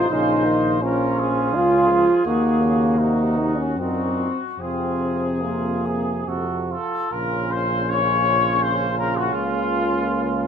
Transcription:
Already playing: D#4 C5
0.10 A#1 C#3 D#4 F4
0.45 D#3
0.81 F3 C#4 F4 A#4
1.18 G#4
1.54 C#2 C#3 F4
1.90 F3
2.25 D#2 D#3 A#3 F#4
2.62 C#3
2.98 C3 D#4 F#4
3.36 D#4
3.57 C#4
3.77 F#2 A#2 C4 D#4 F#4
4.58 F2 C3 C4 F4 G#4
5.41 A#3 F4
5.86 G#4
6.27 F2 C3 F#4 A4
6.70 F4 A4
7.11 A#1 C#3 C#4 F4 A#4
7.50 C5
7.88 C#5
8.61 C5
8.97 A#4
9.15 F#4
9.32 C#2 A#3 F4

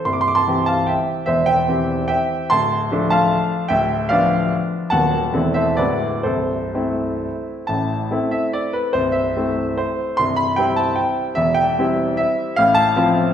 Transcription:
0.05 C1 C2 C6
0.13 D6
0.21 C6
0.28 D6
0.35 A5 C6
0.48 E3 C4 G4
0.66 F5 A5
0.87 E5 G5
1.26 E1 E2 C5 E5
1.46 E5 G5
1.68 E3 C4 G4
2.08 E5 G5
2.50 D1 D2 A5 C6
2.91 F3 A3 D4
3.10 F5 A5
3.69 D1 D2 E5 G5
4.09 F3 B3 D4 D5 F5
4.90 D#1 D#2 F#3 B3 F#4 F#5 A5
5.33 E1 E2 A3 C4 E4
5.54 C5 E5
5.77 D1 D2 G#3 B3 E4 B4 D5
6.23 C1 C2 A4 C5
6.74 A3 C4 E4
7.67 A1 A2 A5
8.11 A3 C4 E4
8.31 E5
8.53 D5
8.73 B4
8.93 C1 C2 C5
9.12 E5
9.37 A3 C4 E4
9.77 C5
10.17 C1 C2 C6
10.36 B5
10.56 G3 C4 E4 G5
10.76 A5
10.96 G5
11.35 E1 E2 E5
11.54 G5
11.79 G3 C4 E4
12.17 E5
12.56 A1 A2 F5
12.75 A5
12.96 F3 C4 F4

